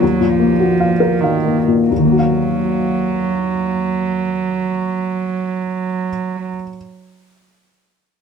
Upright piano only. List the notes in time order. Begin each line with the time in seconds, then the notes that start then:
0.02 D#2
0.21 A#2
0.40 A#3
0.60 F#4
0.80 F5
1.00 A#4
1.24 F5
1.45 A#3
1.68 A#2
1.91 D#2
1.97 D#3
2.05 A#3
2.12 F#4
2.19 F5